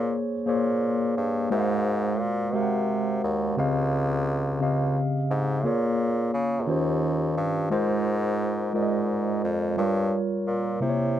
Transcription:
Already playing: bassoon A#2, tine electric piano A#3 G#4 C5 C#5
0.46 bassoon A#2, tine electric piano A#3 G#4 C5 C#5
1.17 bassoon G2
1.50 bassoon G#2, tine electric piano G#3 F#4 A#4 C5 E5
1.60 tine electric piano F5
2.20 bassoon A#2
2.53 bassoon C3, tine electric piano G#3 F#4 A#4 C5 F5
2.63 tine electric piano F#5
3.24 bassoon D#2
3.57 bassoon C#2, tine electric piano C#3 C4 G4 D#5 F5
4.60 bassoon C#2, tine electric piano C#3 C4 G4 D#5 F5
5.31 bassoon G#2
5.64 bassoon A#2, tine electric piano A#3 F4 G#4 C#5
6.34 bassoon C#3
6.67 bassoon D#2, tine electric piano D#3 C#4 F4 G4 C5
7.37 bassoon G2
7.70 bassoon G#2, tine electric piano G#3 F4 A#4 C5
8.73 bassoon G#2, tine electric piano G#3 F4 A#4 D5
8.83 tine electric piano D#5
9.44 bassoon F2
9.77 bassoon G2, tine electric piano G3 F4 A#4 C#5
10.47 bassoon A#2
10.80 tine electric piano C3 A#3 E4 C5, bassoon C3
10.89 tine electric piano C#5

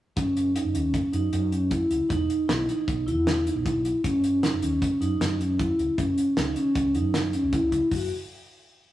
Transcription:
0.16 fretless electric bass F#1, vibraphone C#4, kick, closed hi-hat
0.37 closed hi-hat
0.55 vibraphone D#4, closed hi-hat
0.65 fretless electric bass F#1
0.74 fretless electric bass D#2, vibraphone C#4, closed hi-hat
0.94 fretless electric bass F#1, kick, closed hi-hat
1.13 fretless electric bass F#2, vibraphone D#4, closed hi-hat
1.33 fretless electric bass F#2, closed hi-hat
1.51 vibraphone C#4, closed hi-hat
1.71 vibraphone E4, kick, closed hi-hat
1.91 fretless electric bass C#2, closed hi-hat
2.09 fretless electric bass E1, vibraphone D#4, kick, closed hi-hat
2.30 closed hi-hat
2.48 fretless electric bass B1, vibraphone E4, snare, closed hi-hat
2.68 vibraphone D#4, closed hi-hat
2.88 fretless electric bass B1, kick, closed hi-hat
3.07 fretless electric bass E2, vibraphone E4, closed hi-hat
3.27 snare, closed hi-hat
3.46 vibraphone D#4, closed hi-hat
3.55 fretless electric bass B1
3.65 vibraphone E4, kick, closed hi-hat
3.75 fretless electric bass B1
3.85 closed hi-hat
4.04 fretless electric bass F#1, vibraphone C#4, kick, closed hi-hat
4.24 closed hi-hat
4.43 vibraphone D#4, snare, closed hi-hat
4.53 fretless electric bass F#1
4.62 fretless electric bass D#2, vibraphone C#4, closed hi-hat
4.82 fretless electric bass F#1, kick, closed hi-hat
5.01 fretless electric bass F#2, vibraphone D#4, closed hi-hat
5.20 fretless electric bass F#2, snare, closed hi-hat
5.39 vibraphone C#4, closed hi-hat
5.59 vibraphone E4, kick, closed hi-hat
5.79 fretless electric bass C#2, closed hi-hat
5.98 fretless electric bass F#1, vibraphone C#4, kick, closed hi-hat
6.18 closed hi-hat
6.36 fretless electric bass C#2, vibraphone D#4, snare, closed hi-hat
6.56 vibraphone C#4, closed hi-hat
6.75 fretless electric bass C#2, kick, closed hi-hat
6.94 fretless electric bass F#2, vibraphone D#4, closed hi-hat
7.14 snare, closed hi-hat
7.33 vibraphone C#4, closed hi-hat
7.43 fretless electric bass C#2
7.53 vibraphone E4, kick, closed hi-hat
7.62 fretless electric bass C#2
7.72 kick, closed hi-hat
7.91 fretless electric bass F#1, vibraphone F#4, kick, open hi-hat

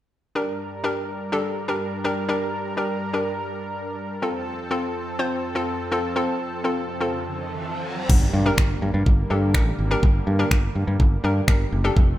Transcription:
0.35 analog synth pad G2 G3 D4 A#4, synth pluck D4 G4 A#4
0.84 synth pluck D4 G4 A#4
1.32 synth pluck D4 G4 A4
1.68 synth pluck D4 G4 A#4
2.04 synth pluck D4 G4 A#4
2.29 synth pluck D4 G4 A#4
2.77 synth pluck D4 G4 A#4
3.13 synth pluck D4 G4 A#4
4.22 analog synth pad F2 F3 C4 A4, synth pluck C4 F4 A4
4.71 synth pluck C4 F4 A4
5.19 synth pluck C4 F4 C5
5.55 synth pluck C4 F4 A4
5.92 synth pluck C4 F4 A4
6.16 synth pluck C4 F4 A4, riser
6.64 synth pluck C4 F4 A4
7.00 synth pluck C4 F4 A4
8.09 fingered electric bass G1, analog synth pad D3 G3 A#3, kick, crash, impact
8.33 fingered electric bass G2
8.46 synth pluck D4 G4 A#4
8.58 fingered electric bass G1, finger snap, kick
8.82 fingered electric bass G2
8.94 fingered electric bass G2
9.06 fingered electric bass G1, kick
9.30 fingered electric bass G2, synth pluck D4 G4 A4
9.54 fingered electric bass A1, synth pluck D4 G4 A#4, finger snap, kick
9.79 fingered electric bass G#1
9.91 synth pluck D4 G4 A#4
10.03 fingered electric bass G1, kick
10.27 fingered electric bass G2
10.39 synth pluck D4 G4 A#4
10.51 fingered electric bass G1, finger snap, kick
10.75 fingered electric bass G2
10.87 fingered electric bass G2
11.00 fingered electric bass G1, kick
11.24 fingered electric bass G2, synth pluck D4 G4 A#4
11.48 fingered electric bass G1, synth pluck D4 G4 A#4, finger snap, kick
11.72 fingered electric bass F#1
11.84 synth pluck D4 G4 A4
11.96 fingered electric bass F1, analog synth pad C3 F3 A3, kick

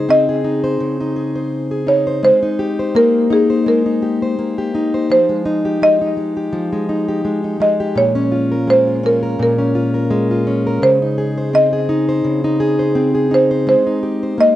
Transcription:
Already playing: steel-string acoustic guitar C#3 D#4 G#4 C5, marimba C5
0.09 steel-string acoustic guitar C4, marimba D#5
0.29 steel-string acoustic guitar G#4
0.44 steel-string acoustic guitar D#4
0.64 steel-string acoustic guitar C5
0.80 steel-string acoustic guitar C#3
1.00 steel-string acoustic guitar D#4
1.16 steel-string acoustic guitar G#4
1.35 steel-string acoustic guitar C5
1.71 steel-string acoustic guitar G#4
1.87 steel-string acoustic guitar D#4, marimba C#5
2.07 steel-string acoustic guitar C5
2.23 steel-string acoustic guitar G#3, marimba C5
2.43 steel-string acoustic guitar D#4
2.59 steel-string acoustic guitar G4
2.79 steel-string acoustic guitar C5
2.95 steel-string acoustic guitar A#3, marimba A#4
3.30 steel-string acoustic guitar D#4, marimba G#4
3.50 steel-string acoustic guitar C5
3.66 steel-string acoustic guitar G#3, marimba A#4
3.86 steel-string acoustic guitar D#4
4.02 steel-string acoustic guitar G4
4.22 steel-string acoustic guitar C5
4.39 steel-string acoustic guitar A#3
4.58 steel-string acoustic guitar G4
4.75 steel-string acoustic guitar D#4
4.94 steel-string acoustic guitar C5
5.10 steel-string acoustic guitar F3, marimba C5
5.29 steel-string acoustic guitar G#3
5.45 steel-string acoustic guitar D#4
5.65 steel-string acoustic guitar G4
5.82 steel-string acoustic guitar G#3, marimba D#5
6.01 steel-string acoustic guitar D#4
6.17 steel-string acoustic guitar G#3
6.37 steel-string acoustic guitar G4
6.53 steel-string acoustic guitar F3
6.73 steel-string acoustic guitar G#3
6.89 steel-string acoustic guitar D#4
7.08 steel-string acoustic guitar G4
7.25 steel-string acoustic guitar G#3
7.44 steel-string acoustic guitar D#4
7.60 steel-string acoustic guitar G#3, marimba D#5
7.80 steel-string acoustic guitar G4
7.96 steel-string acoustic guitar A#2, marimba C#5
8.15 steel-string acoustic guitar C#4
8.32 steel-string acoustic guitar F4
8.52 steel-string acoustic guitar A#4
8.67 steel-string acoustic guitar G#3, marimba C5
8.87 steel-string acoustic guitar F4
9.03 steel-string acoustic guitar C#4, marimba A#4
9.23 steel-string acoustic guitar A#4
9.39 steel-string acoustic guitar A#2, marimba A#4
9.58 steel-string acoustic guitar C#4
9.75 steel-string acoustic guitar F4
9.94 steel-string acoustic guitar A#4
10.11 steel-string acoustic guitar G#3
10.31 steel-string acoustic guitar F4
10.47 steel-string acoustic guitar C#4
10.67 steel-string acoustic guitar A#4
10.82 steel-string acoustic guitar C#3, marimba C5
11.02 steel-string acoustic guitar D#4
11.18 steel-string acoustic guitar G#4
11.38 steel-string acoustic guitar C5
11.53 steel-string acoustic guitar C4, marimba D#5
11.73 steel-string acoustic guitar G#4
11.89 steel-string acoustic guitar D#4
12.09 steel-string acoustic guitar C5
12.25 steel-string acoustic guitar C#3
12.44 steel-string acoustic guitar D#4
12.60 steel-string acoustic guitar G#4
12.79 steel-string acoustic guitar C5
12.95 steel-string acoustic guitar C4
13.15 steel-string acoustic guitar G#4
13.31 steel-string acoustic guitar D#4, marimba C5
13.51 steel-string acoustic guitar C5
13.67 steel-string acoustic guitar G#3, marimba C5
13.87 steel-string acoustic guitar D#4
14.03 steel-string acoustic guitar G4
14.23 steel-string acoustic guitar C5
14.38 steel-string acoustic guitar A#3, marimba D#5

